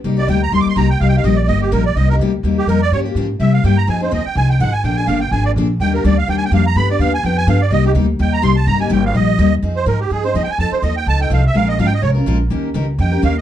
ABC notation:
X:1
M:4/4
L:1/16
Q:"Swing" 1/4=250
K:Cm
V:1 name="Accordion"
z2 d2 g2 b2 (3c'2 d'2 c'2 b2 g2 | (3f2 g2 f2 e2 d2 e2 G2 B2 d2 | e2 B2 z6 G2 B2 d2 | _d2 z6 =e2 f2 g2 b2 |
a2 c2 e2 g2 a2 g2 ^f2 a2 | g2 a2 f2 g2 a2 d2 z4 | g2 B2 d2 f2 (3g2 a2 g2 f2 b2 | =b2 d2 f2 a2 g2 a2 f2 d2 |
e2 G2 z4 g2 b2 c'2 =a2 | b2 a2 g2 f2 e6- e z | [K:Fm] z2 c2 B2 G2 A2 c2 (3e2 g2 a2 | =a2 c2 e2 g2 a2 g2 f2 =e2 |
f2 e2 (3f2 g2 e2 d2 z6 | z8 g4 f2 e2 |]
V:2 name="Steel-string acoustic guitar"
[C,G,B,EG]2 [B,EG]2 [C,G,B,EG]2 z2 [C,G,B,EG]2 z2 [C,G,B,EG]2 z2 | [C,G,B,EG]2 [B,EG]2 [C,G,B,EG]2 z2 [C,G,B,EG]2 z2 [C,G,B,EG]2 z2 | [C,G,B,EG]2 [B,EG]2 [C,G,B,EG]2 z2 [C,G,B,EG]2 z2 [C,G,B,EG]2 z2 | [_D,F,B,FG]2 [B,FG]2 [D,F,B,FG]2 z2 [C,G,B,=EG]2 z2 [C,G,B,EG]2 z2 |
[F,CEA]2 [CEA]2 [F,CEA]2 z2 [F,CEA]2 z2 [F,CEA]2 z2 | [D,F,B,DA]2 [B,DA]2 [D,F,B,DA]2 z2 [D,F,B,DA]2 z2 [D,F,B,DA]2 z2 | [E,G,B,DG]2 [B,DG]2 [E,G,B,DG]2 z2 [E,G,B,DG]2 z2 [E,G,B,DG]2 z2 | [D,F,=B,DG]2 [B,DG]2 [D,F,B,DG]2 z2 [D,F,B,DG]2 z2 [D,F,B,DG]2 z2 |
[C,G,B,EG]2 [B,EG]2 [C,G,B,EG]2 z2 [C,G,B,EG]2 z2 [C,G,B,EG]2 z2 | [C,G,B,EG]2 [B,EG]2 [C,G,B,EG]2 z2 [C,G,B,EG]2 z2 [C,G,B,EG]2 z2 | [K:Fm] [F,CEA]2 z2 [F,CEA]2 z2 [F,CEA]2 [CEA]2 [F,CEA]2 z2 | [F,CE=A]2 z2 [F,CEA]2 z2 [F,CEA]2 [CEA]2 [F,CEA]2 z2 |
[F,A,DFB]2 z2 [F,A,DFB]2 z2 [F,A,DFB]2 [DFB]2 [F,A,DFB]2 z2 | [E,B,DGB]2 z2 [E,B,DGB]2 z2 [E,B,DGB]2 [DGB]2 [E,B,DGB]2 z2 |]
V:3 name="Upright bass" clef=bass
C,,4 D,,4 E,,2 z2 C,,4 | C,,4 B,,,4 G,,,4 B,,,4 | C,,4 D,,4 E,,4 F,,4 | G,,4 A,,4 C,4 G,,4 |
F,,4 E,,2 z2 C,,4 A,,,4 | B,,,4 G,,,4 A,,,4 B,,,4 | E,,4 D,,4 E,,4 F,,4 | G,,4 E,,4 F,,4 G,,4 |
C,,4 D,,4 E,,4 C,,4 | G,,,4 A,,,4 B,,,4 E,,4 | [K:Fm] F,,4 A,,4 G,,4 E,,2 z2 | F,,2 z2 E,,4 D,,4 C,,4 |
B,,,4 A,,,4 C,,4 B,,,4 | E,,4 D,,4 F,,4 E,,4 |]